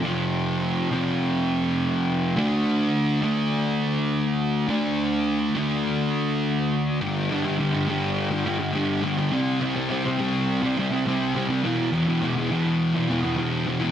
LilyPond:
\new Staff \with { instrumentName = "Distorted electric guitar" } { \clef bass \time 4/4 \key g \major \tempo 4 = 103 <f, c f>4. <f, c f>2~ <f, c f>8 | <d a d'>4. <d a d'>2~ <d a d'>8 | <d a d'>4. <d a d'>2~ <d a d'>8 | <g, d g>8 <g, d g>16 <d g>16 <g, d g>16 <d g>16 <g, d g>8. <d g>16 <g, d g>16 <d g>16 <g, d g>8 <g, d g>16 <d g>16 |
<c g c'>8 <c g c'>16 <g c'>16 <c g c'>16 <g c'>16 <c g c'>8. <g c'>16 <c g c'>16 <g c'>16 <c g c'>8 <c g c'>16 <g c'>16 | <e, b, e>8 <e, b, e>16 <b, e>16 <e, b, e>16 <b, e>16 <e, b, e>8. <b, e>16 <e, b, e>16 <b, e>16 <e, b, e>8 <e, b, e>16 <b, e>16 | }